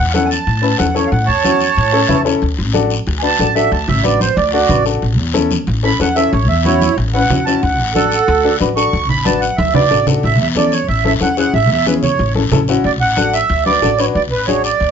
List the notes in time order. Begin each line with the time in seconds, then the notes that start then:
Already playing: F#5
0.00 E2
0.10 C#4 F5
0.14 E4 A4 F#5, high conga, short guiro
0.25 G#5
0.30 A5, short guiro
0.47 A2, long guiro
0.62 C#4 E4 B4
0.78 E2 C#4 E4 A4 F#5, high conga, short guiro
0.94 C#4 E4 A4 C#5, short guiro
1.07 F5
1.11 A2 F#5, long guiro
1.26 E2 C#5 A5
1.44 C#4 E4 F#4, high conga, short guiro
1.61 short guiro
1.76 A2, long guiro
1.92 C#4 E4 A4 A5
2.08 E2 C#4 E4 B4 E5, high conga, low conga, short guiro
2.25 C#4 E4 A4 C#5, short guiro
2.42 D2, long guiro
2.58 A1
2.73 D4 F#4 A4, high conga, short guiro
2.90 short guiro
3.07 D2, long guiro
3.19 D4 F#4 B4 G#5
3.24 A5
3.39 A1 D4 F#4 A4, high conga, short guiro
3.55 D4 F#4 A4 E5, short guiro
3.72 D2 A5, long guiro
3.88 A1 E5, low conga
4.04 D4 F#4 B4 D5, high conga, short guiro
4.21 C5, high conga, short guiro
4.37 D2 D5, long guiro
4.52 D4 F#4 A4 D5
4.69 A1 D4 F#4 B4, high conga, low conga, short guiro
4.85 D4 F#4 A4, short guiro
5.02 A1, long guiro
5.18 E2
5.34 C#4 E4 A4, high conga, short guiro
5.51 high conga, short guiro
5.67 A1, long guiro
5.83 C#4 E4 A4 B5
5.99 E2 C#4 E4 A4 F#5, high conga, short guiro
6.16 C#4 E4 A4 E5, short guiro
6.32 A1 C#5, long guiro
6.49 E2 E5
6.65 C#4 E4 F#4 C#5, high conga, short guiro
6.82 high conga, short guiro
6.97 A1, long guiro
7.14 C#4 E4 B4 F#5
7.30 E2 C#4 E4 F#4, high conga, low conga, short guiro
7.45 C#4 E4 F#4 A5, short guiro
7.62 D2 F#5, long guiro
7.79 A1
7.95 D4 F#4 A4 F#5, high conga, short guiro
8.12 short guiro
8.28 D2, long guiro
8.44 D4 F#4 A4
8.60 A1 D4 F#4 B4, high conga, short guiro
8.76 D4 F#4 A4 C#6, short guiro
8.93 D2, long guiro
9.09 A1 B5, low conga
9.25 D4 F#4 B4 A5, high conga, short guiro
9.41 F#5, short guiro
9.57 D2 E5, high conga, long guiro
9.74 D4 F#4 B4 D5, low conga
9.90 A1 D4 F#4 A4, short guiro
10.06 D4 F#4 A4, low conga, short guiro
10.23 A1 E5, long guiro
10.40 E2 E5
10.55 C#4 E4 A4 D5, high conga, short guiro
10.72 C#5, short guiro
10.88 A1 E5, long guiro
11.04 C#4 E4 A4 E5, high conga
11.20 E2 C#4 E4 A4 F#5, high conga, short guiro
11.37 C#4 E4 G#4 F#5, short guiro
11.54 A1 E5, long guiro
11.70 E2 E5
11.86 C#4 E4 G#4 B4, high conga, short guiro
12.03 C#5, low conga, short guiro
12.19 A1, long guiro
12.35 C#4 E4 A4, high conga
12.52 A1 C#4 E4 A4, high conga, low conga, short guiro
12.68 C#4 E4 F#4, short guiro
12.84 D2 D5, long guiro
13.01 A1 F#5
13.17 D4 F#4 A4, high conga, short guiro
13.33 E5, short guiro
13.50 D2, long guiro
13.66 D4 F#4 B4 D5, high conga
13.82 A1 D4 F#4 A4, high conga, short guiro
13.98 D4 F#4 B4 C#5, short guiro
14.15 D2 D5, long guiro
14.32 A1 B4
14.47 D4 F#4 G#4 C#5, high conga, short guiro
14.64 D5, short guiro
14.80 D2, long guiro